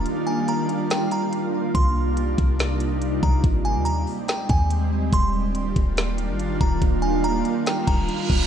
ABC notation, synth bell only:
X:1
M:4/4
L:1/8
Q:1/4=142
K:Eb
V:1 name="Synth bell"
z a b2 g b3 | c'2 z4 z b | z a b2 g a3 | c'2 z4 z b |
z a b2 g b3 |]